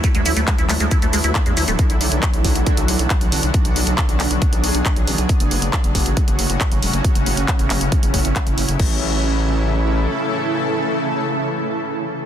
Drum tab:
CC |----------------|----------------|----------------|----------------|
HH |xxoxxxoxxxoxxxox|xxoxxxoxxxoxxxox|xxoxxxoxxxoxxxox|xxoxxxoxxxoxxxox|
SH |xxxxxxxxxxxxxxxx|----------------|----------------|----------------|
CP |----x-x-----x---|----x-------x---|----x-x-----x---|----x-------x---|
BD |o---o---o---o---|o---o-o-o---o---|o---o---o---o---|o---o-o-o---o---|

CC |----------------|x---------------|----------------|
HH |xxoxxxoxxxoxxxox|----------------|----------------|
SH |----------------|----------------|----------------|
CP |----x-x-----x---|----------------|----------------|
BD |o---o---o-o-o---|o---------------|----------------|